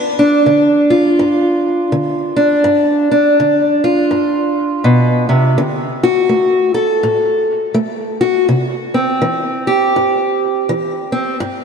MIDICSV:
0, 0, Header, 1, 2, 480
1, 0, Start_track
1, 0, Tempo, 725514
1, 1763, Time_signature, 4, 2, 24, 8
1, 7702, End_track
2, 0, Start_track
2, 0, Title_t, "Steel-string acoustic guitar"
2, 0, Program_c, 0, 25
2, 0, Note_on_c, 0, 43, 76
2, 126, Note_on_c, 0, 62, 60
2, 279, Note_off_c, 0, 43, 0
2, 306, Note_on_c, 0, 50, 64
2, 598, Note_on_c, 0, 65, 60
2, 755, Note_off_c, 0, 50, 0
2, 789, Note_on_c, 0, 43, 69
2, 1237, Note_off_c, 0, 43, 0
2, 1271, Note_on_c, 0, 50, 66
2, 1562, Note_off_c, 0, 62, 0
2, 1564, Note_on_c, 0, 62, 57
2, 1719, Note_off_c, 0, 50, 0
2, 1734, Note_off_c, 0, 65, 0
2, 1747, Note_on_c, 0, 43, 78
2, 2058, Note_off_c, 0, 62, 0
2, 2060, Note_on_c, 0, 62, 60
2, 2197, Note_off_c, 0, 43, 0
2, 2248, Note_on_c, 0, 50, 64
2, 2540, Note_on_c, 0, 65, 60
2, 2688, Note_off_c, 0, 50, 0
2, 2718, Note_on_c, 0, 43, 63
2, 3163, Note_off_c, 0, 43, 0
2, 3204, Note_on_c, 0, 47, 67
2, 3493, Note_off_c, 0, 47, 0
2, 3499, Note_on_c, 0, 48, 64
2, 3666, Note_off_c, 0, 62, 0
2, 3666, Note_off_c, 0, 65, 0
2, 3687, Note_off_c, 0, 48, 0
2, 3690, Note_on_c, 0, 50, 75
2, 3993, Note_on_c, 0, 66, 69
2, 4129, Note_off_c, 0, 50, 0
2, 4164, Note_on_c, 0, 57, 63
2, 4459, Note_off_c, 0, 66, 0
2, 4462, Note_on_c, 0, 69, 62
2, 4606, Note_off_c, 0, 57, 0
2, 4653, Note_on_c, 0, 45, 66
2, 5090, Note_off_c, 0, 45, 0
2, 5124, Note_on_c, 0, 57, 66
2, 5417, Note_off_c, 0, 69, 0
2, 5430, Note_on_c, 0, 66, 63
2, 5566, Note_off_c, 0, 57, 0
2, 5590, Note_off_c, 0, 66, 0
2, 5614, Note_on_c, 0, 48, 72
2, 5917, Note_on_c, 0, 60, 61
2, 6051, Note_off_c, 0, 48, 0
2, 6097, Note_on_c, 0, 52, 65
2, 6399, Note_on_c, 0, 67, 61
2, 6532, Note_off_c, 0, 52, 0
2, 6590, Note_on_c, 0, 43, 69
2, 7018, Note_off_c, 0, 43, 0
2, 7073, Note_on_c, 0, 52, 71
2, 7343, Note_off_c, 0, 60, 0
2, 7358, Note_on_c, 0, 60, 61
2, 7499, Note_off_c, 0, 52, 0
2, 7513, Note_off_c, 0, 60, 0
2, 7513, Note_off_c, 0, 67, 0
2, 7544, Note_on_c, 0, 43, 81
2, 7702, Note_off_c, 0, 43, 0
2, 7702, End_track
0, 0, End_of_file